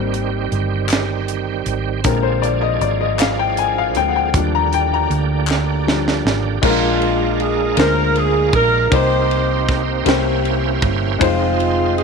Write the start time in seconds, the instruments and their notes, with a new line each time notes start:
Already playing: fingered electric bass G#1, tonewheel organ D#3 G3 C4 G4, grand piano G3 A#3 C4
0.14 closed hi-hat
0.52 fingered electric bass G1, closed hi-hat
0.89 snare, clap, closed hi-hat
1.28 closed hi-hat
1.66 fingered electric bass G#1, closed hi-hat
2.04 fingered electric bass A#1, grand piano D3 G#3 C4 A#4, tonewheel organ F3 A#3 D4 G#4, kick, closed hi-hat
2.23 grand piano C5
2.42 grand piano D5, closed hi-hat
2.62 grand piano D#5
2.81 fingered electric bass G#1, grand piano D5, closed hi-hat
3.01 grand piano D#5
3.19 grand piano F5, snare, clap, closed hi-hat
3.39 grand piano G5
3.57 grand piano G#5, closed hi-hat
3.78 grand piano F5
3.95 fingered electric bass D2, grand piano D3 G#3 C4 G5, closed hi-hat
4.08 grand piano F#5
4.16 grand piano G5
4.33 fingered electric bass D#2, tonewheel organ D3 A#3 D4 F#4, grand piano F3 G3 D4, kick, closed hi-hat
4.40 tonewheel organ G4
4.55 grand piano A#5
4.73 grand piano G5, closed hi-hat
4.94 grand piano A#5
5.10 fingered electric bass D2, closed hi-hat
5.47 snare, clap
5.87 grand piano F3 G3 D4, snare
6.08 snare
6.25 fingered electric bass G#1, snare
6.62 fingered electric bass A#1, grand piano A#2 G#3 A#3 C4 F4 A#4, tonewheel organ G#3 A#3 D4 F4 A#4, saxophone section G#3 D4 F4, kick, crash
6.70 grand piano D4
7.02 ride
7.40 saxophone section G#4, ride
7.76 fingered electric bass D2, grand piano G#3 A#3 D4 F4 C5, saxophone section A#4, snare, ride
8.15 saxophone section G#4, ride
8.53 fingered electric bass A#1, saxophone section A#4, kick, ride
8.90 fingered electric bass C2, grand piano C3 A#3 C4 D#4 G4 C5, tonewheel organ A#3 C4 D#4 G4 C5, saxophone section D#4 G4 C5, kick, ride
9.31 ride
9.69 kick, snare, ride
10.04 fingered electric bass C2, grand piano C3 A#3 C#4 E4 G4 C5, tonewheel organ A#3 C#4 E4 G4 C5, ride
10.09 snare
10.45 ride
10.82 fingered electric bass G1, kick, ride
11.19 fingered electric bass F1, grand piano G#3 C4 D#4 F4 C5, tonewheel organ G#3 C4 D#4 F4 C5, saxophone section G#3 C4 F4, kick, ride
11.60 ride
11.97 saxophone section G#4, ride